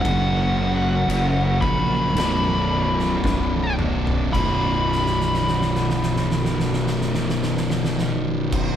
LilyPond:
<<
  \new Staff \with { instrumentName = "Lead electric guitar" } { \time 4/4 \key b \minor \tempo 4 = 54 fis''4. b''2 r8 | b''1 | }
  \new Staff \with { instrumentName = "Distorted electric guitar" } { \clef bass \time 4/4 \key b \minor <fis, cis fis ais cis' fis'>4. <fis, cis fis ais cis' fis'>8 <b,, fis, b, fis d'>4. <b,, fis, b, fis d'>8 | <b,, fis, b, fis d'>1 | }
  \new Staff \with { instrumentName = "Distorted electric guitar" } { \clef bass \time 4/4 \key b \minor <fis, cis fis>4. <fis, cis fis>8 <b,, fis, b,>4. <b,, fis, b,>8 | <b,, fis, b,>1 | }
  \new Staff \with { instrumentName = "Distorted electric guitar" } { \clef bass \time 4/4 \key b \minor <fis, cis fis>2 <b,, fis, b,>2 | <b,, fis, b,>1 | }
  \new Staff \with { instrumentName = "Fingered electric bass" } { \clef bass \time 4/4 \key b \minor fis,,4 fis,,8 ais,,8 b,,,4 b,,,4 | b,,,1 | }
  \new DrumStaff \with { instrumentName = "Drums" } \drummode { \time 4/4 <cymc bd>4 cymc8 bd8 <cymc sn>8. sn16 <bd sn>8 toml16 tomfh16 | <cymc bd>8 sn32 sn32 sn32 sn32 sn32 sn32 sn32 sn32 sn32 sn32 sn32 sn32 sn32 sn32 sn32 sn32 sn32 sn32 sn32 sn32 sn32 sn32 sn8 <cymc bd>16 | }
>>